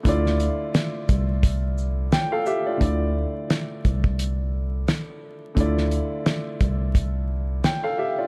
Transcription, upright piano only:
0.03 D3 A3 E4 F4
0.08 D5
2.13 G5
2.32 A4 F5
2.46 G4 E5
2.66 F4 D5
2.77 D3 A3 E4
2.81 F4 D5
5.55 D3 A3 E4
5.59 F4 D5
7.64 G5
7.84 A4 F5
7.98 G4 E5
8.18 F4 D5

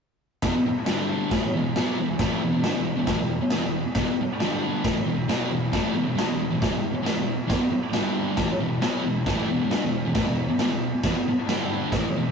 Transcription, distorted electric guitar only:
0.43 E2 B2
0.56 muted distorted electric guitar stroke
0.66 muted distorted electric guitar stroke
0.88 G2 D3 G3
1.33 A2 E3
1.44 muted distorted electric guitar stroke
1.56 E2 B2
1.77 B2 F#3 B3
1.99 E2 B2
2.20 A2 E3 A3
2.42 E2 B2
2.52 E2 B2
2.64 G2 D3
2.75 E2 B2
2.96 E2 B2
3.07 A2 E3
3.19 E2 B2
3.41 muted distorted electric guitar stroke
3.53 E2 B2
3.65 E2 B2
3.98 E2 B2
4.10 muted distorted electric guitar stroke
4.21 muted distorted electric guitar stroke
4.42 G2 D3 G3
4.85 A2 E3
4.95 muted distorted electric guitar stroke
5.06 E2 B2
5.28 B2 F#3 B3
5.51 E2 B2
5.72 A2 E3 A3
5.94 E2 B2
6.04 E2 B2
6.16 G2 D3
6.28 E2 B2
6.50 E2 B2
6.62 A2 E3
6.71 E2 B2
6.93 muted distorted electric guitar stroke
7.02 E2 B2
7.15 E2 B2
7.47 E2 B2
7.60 muted distorted electric guitar stroke
7.71 muted distorted electric guitar stroke
7.93 G2 D3 G3
8.37 A2 E3
8.49 muted distorted electric guitar stroke
8.60 E2 B2
8.82 B2 F#3 B3
9.03 E2 B2
9.27 A2 E3 A3
9.50 E2 B2
9.61 E2 B2
9.70 G2 D3
9.84 E2 B2
10.05 E2 B2
10.15 A2 E3
10.26 E2 B2
10.48 muted distorted electric guitar stroke
10.58 E2 B2
10.71 E2 B2
11.04 E2 B2
11.16 muted distorted electric guitar stroke
11.28 muted distorted electric guitar stroke
11.49 G2 D3 G3
11.94 A2 E3
12.06 muted distorted electric guitar stroke
12.16 E2 B2

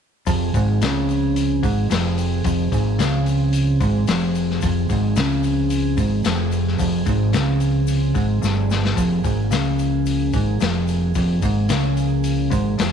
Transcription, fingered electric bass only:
0.27 F1
0.54 G#1
0.82 C#2
1.63 G#1
1.90 F1
2.45 F1
2.72 G#1
2.99 C#2
3.80 G#1
4.08 F1
4.63 F1
4.90 G#1
5.16 C#2
5.97 G#1
6.25 F1
6.79 F1
7.07 G#1
7.33 C#2
8.15 G#1
8.43 G1
8.97 F1
9.24 G#1
9.51 C#2
10.33 G#1
10.61 F1
11.15 F1
11.42 G#1
11.70 C#2
12.51 G#1
12.79 F1

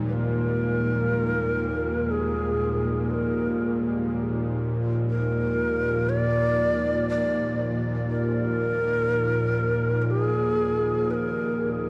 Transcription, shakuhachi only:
0.08 B4
0.13 A#4
2.11 G#4
3.10 B4
3.14 A#4
5.10 A#4
6.09 D5
7.10 D5
8.11 A#4
10.01 A#4
10.10 G#4
11.11 A#4 B4

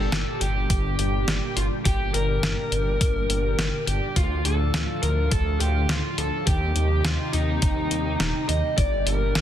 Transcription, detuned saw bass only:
0.12 G1
0.41 G1
0.70 G1
0.99 G1
1.28 G1
1.56 G1
1.85 G1
2.14 G1
2.43 G1
2.72 G1
3.01 G1
3.29 G1
3.58 G1
3.87 G1
4.16 D2
4.45 D2
4.74 D2
5.03 D2
5.32 D2
5.61 D2
5.89 D2
6.18 D2
6.47 D#2
6.76 D#2
7.05 D#2
7.34 D#2
7.62 D#2
7.91 D#2
8.20 D#1
8.49 D#2
8.78 G1
9.06 G1
9.35 G1

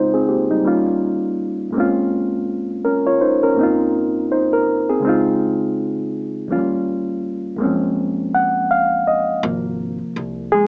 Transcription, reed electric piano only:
Already playing: C#3 G#3 C4 D#4 F4 C5
0.14 C4 G#4
0.29 A#3 G4
0.51 G3 D#4
0.63 D#2 G3 A#3 C#4
0.68 F4
1.71 F#2 G#3 A#3
1.76 C4 C#4 F4
2.85 C#4 A#4
3.07 F4 C#5
3.21 D#4 C5
3.43 C#4 A#4
3.54 G#2 A#3
3.58 C4 D#4
3.63 F4
4.32 D#4 C5
4.53 A#4
4.89 C4 G#4
5.00 C#3 G#3
5.05 C4 D#4
5.09 F4
6.48 D#2 F3 A#3 C#4
6.53 G3 F4
7.56 F#2 G#3 A#3
7.62 F3 C4 C#4
8.34 F#5
8.71 F5
9.07 D#5
9.43 C3 F3 A#3
10.52 G#3 G#4

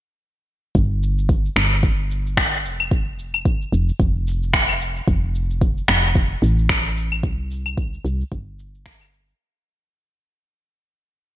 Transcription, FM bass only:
0.75 G1
1.56 G1
2.64 F1
3.72 F1
4.00 F1
5.08 F1
5.88 F1
6.42 A1
7.23 C2
8.05 C2
8.32 G1

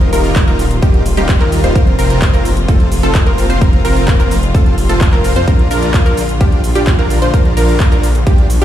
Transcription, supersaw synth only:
0.13 G3 A#3 D#4 F4 A#4
0.48 G3 A#3 D#4 F4 A#4
0.83 G3 A#3 D#4 F4 G4
1.17 G3 A#3 D#4 F4 G4
1.41 G3 A#3 D#4 F4 A#4
1.64 G3 A#3 D#4 F4 C5
1.75 C4 F4 A#4
1.99 C4 F4 A#4
2.33 C4 F4 A#4
2.68 C4 F4 A4
3.03 C4 F4 A4
3.27 C4 F4 A#4
3.50 C4 F4 C5
3.61 C4 F4 A#4
3.85 C4 F4 A#4
4.20 C4 F4 A#4
4.54 C4 F4 A4
4.89 C4 F4 A4
5.13 C4 F4 A#4
5.36 C4 F4 C5
5.48 D4 F4 A#4
5.71 D4 F4 A#4
6.06 D4 F4 A#4
6.41 D4 F4 G4
6.75 D4 F4 G4
6.99 D4 F4 A#4
7.22 D4 F4 C5
7.34 D4 F4 A#4
7.57 D4 F4 A#4
7.92 D4 F4 A#4
8.27 D4 F4 G4
8.62 D4 F4 G4

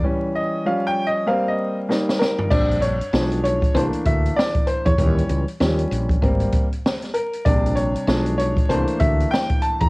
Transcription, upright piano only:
0.03 E3 G3 C#4
0.35 D#5
0.65 F3 G3 C#4 F5
0.87 G5
1.07 D#5
1.27 G3 A#3 C4 F5
1.48 D#5
1.89 G3 A#3 D#4
2.19 A#4
2.50 G3 C4 D4 D5
2.82 C#5
3.13 F3 G#3 D4
3.44 C#5
3.75 E3 A3 A#3 D4 C5
4.06 E5
4.36 D5
4.67 C5
4.86 C#5
4.98 E3 G3 C#4
5.60 F3 G3 C#4
6.22 G3 A#3 C4
7.14 A#4
7.45 C3 G3 D4 D5
7.75 C#5
8.08 F3 G#3 D4
8.38 C#5
8.69 E3 A3 A#3 D4 C5
9.00 E5
9.31 G5
9.62 A5
9.80 A#5

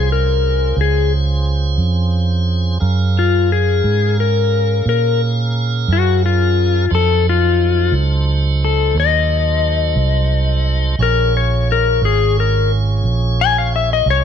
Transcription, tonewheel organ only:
Already playing: C#4 F4 G#4 C5
2.80 C#4 G#4 A#4 F5
6.90 F#3 D#4 A4 C5
10.99 C#4 F4 G#4 C#5

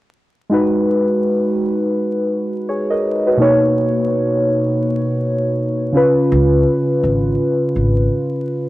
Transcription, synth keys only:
0.50 G#3 D#4 F#4
0.54 B4
2.69 G#4 C#5
2.90 A#4 D#5
3.27 F#4 B4
3.37 B2 A#3 D#4
3.42 C#5
5.92 C#3 C#4 F4
5.97 B4

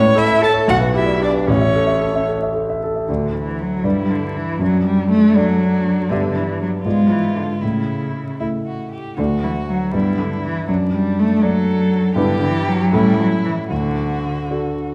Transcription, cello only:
0.16 E4
0.41 A4
0.68 F#4
0.96 E4
1.22 D4
1.48 C#4
3.08 D3
3.35 E3
3.61 F#3
3.84 G3
4.10 D3
4.36 E3
4.61 F#3
4.85 G3
5.11 A3
5.37 F#3
6.09 D3
6.36 E3
6.61 F#3
6.86 G#3
7.11 E3
7.35 D3
7.62 C#3
9.17 D3
9.43 E3
9.69 F#3
9.92 G3
10.18 D3
10.44 E3
10.67 F#3
10.92 G3
11.19 A3
11.42 F#3
12.17 D3
12.43 E3
12.68 F#3
12.94 G3
13.19 F#3
13.45 E3
13.70 D3

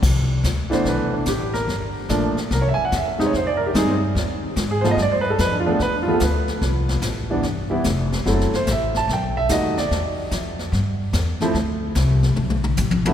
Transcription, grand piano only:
0.70 E3 A3 B3 D4 C5
0.88 B4
1.13 D4
1.28 G4
1.53 A#4
2.09 F3 A3 A#3 D4
2.53 A#4
2.61 C#5
2.69 E5
2.74 G#5
2.85 F#5
2.96 E5
3.18 G3 G#3 C4 D#4
3.26 C#5
3.37 C5
3.47 D5
3.57 A#4
3.67 G4
3.74 G3 G#3 C4 D#4
3.78 G#4
3.89 C4
4.71 G#4
4.81 F3 A3 B3 F4 C5
4.91 D#5
5.02 D5
5.12 C5
5.21 B4
5.30 A4
5.41 B4
5.52 D4
5.60 F4
5.66 F3 A3 B3 D4
5.71 A4
5.82 B4
5.93 D4
6.03 F4
6.07 F3 A3 B3 F4
6.14 A4
6.23 B4
7.30 E3 G3 B3 D4
7.70 E3 G3 B3 E4
8.26 F#3 A3 C4 E4 A4
8.55 C5
8.71 E5
8.97 A5
9.13 G5
9.37 E5
9.49 G3 A3 D#4 F#4 D#5
9.78 D5
11.41 F3 A3 C4 E4
13.07 G2 F#3 A3 B3 E4

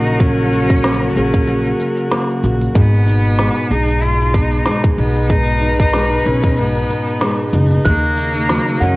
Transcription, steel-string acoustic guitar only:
Already playing: F#3 A#3 C#4 F#4 G#4
0.20 F#3
0.52 F#4
0.84 A#3
1.16 G#4
1.47 F#3
1.80 C#4
2.11 A#3
2.43 F#4
2.75 G#2
3.06 D#4
3.38 G#3
3.70 G#4
4.02 G#2
4.34 B3
4.66 G#3
4.98 D#4
5.30 G#2
5.62 D#4
5.94 G#3
6.27 G#4
6.58 G#2
6.90 B3
7.21 G#3
7.54 D#4
7.86 D#3
8.17 D#4
8.49 F#3
8.81 A#4

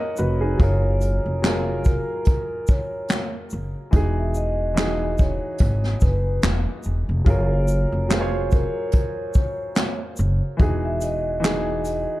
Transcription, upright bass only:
0.19 F1
0.60 F#1
1.26 F1
3.53 F#1
3.94 E1
5.61 G#1
6.03 F#1
6.44 E1
6.86 E1
7.09 F1
7.27 F#1
7.92 F1
10.19 F#1
10.60 E1

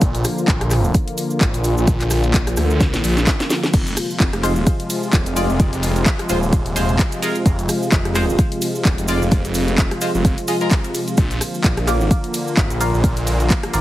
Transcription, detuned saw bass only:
0.02 A#1
0.48 A#1
1.41 G#1
1.54 A#1
1.77 A#1
2.01 A#1
2.34 A#1
2.57 D2
3.04 A#1
3.74 F1
4.20 F1
5.13 D#1
5.26 F1
5.49 F1
5.73 F1
6.29 D#1
6.76 D#1
7.46 F1
7.92 F1
8.85 D#1
8.98 F1
9.22 F1
9.45 F1
9.78 F1
10.15 F1
11.18 A#1
11.64 A#1
12.57 G#1
12.70 A#1
12.94 A#1
13.17 A#1
13.74 G#1

